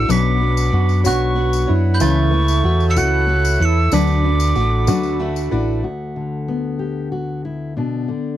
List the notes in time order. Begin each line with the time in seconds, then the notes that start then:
Already playing: D2 B5 E6
0.09 B1 B2 F#3 B3 C#4 D4 F#4 B4 F#5 D6 B6, tambourine
0.41 B3 D4 F#4
0.57 tambourine
0.72 F#2 B3 D4 F#4
0.89 tambourine
1.04 B1 B2 F#3 B3 D4 F#4 C#5 C#6 F#6, tambourine
1.35 B3 D4 F#4 C#5
1.53 tambourine
1.67 F#2 B3 D4 E4 F#4 C#5
1.94 B5 G6
2.00 C#2 C#3 E3 A3 B3 C#4 E4 A4 B4 C#5 E5 C#6 A6, tambourine
2.31 A3 E4 A4 B4
2.48 tambourine
2.64 E2 A3 E4 F#4 A4 B4
2.80 tambourine
2.90 E6 C#7
2.96 C#2 C#3 E3 A3 E4 F#4 A4 B4 F#6 C#7, tambourine
3.27 A3 E4 A4 B4
3.45 tambourine
3.59 E2 A3 E4 A4 B4 F#6 C#7
3.65 E6
3.92 D2 D3 F#3 A3 B3 D4 F#4 B4 D5 F#5 D6 B6, tambourine
4.07 tambourine
4.24 A3 D4 F#4 B4
4.40 tambourine
4.55 A1 A3 D4 F#4 B4, tambourine
4.87 D2 D3 F#3 A3 D4 F#4 B4, tambourine
5.03 tambourine
5.20 A3 D4 F#4 B4 E5
5.36 tambourine
5.51 A1 A3 D4 E4 F#4 B4 D5
5.83 D2 F#4
6.16 D3
6.48 B3
6.79 G4
7.12 F#4
7.45 E4
7.77 B2 D4
8.08 D3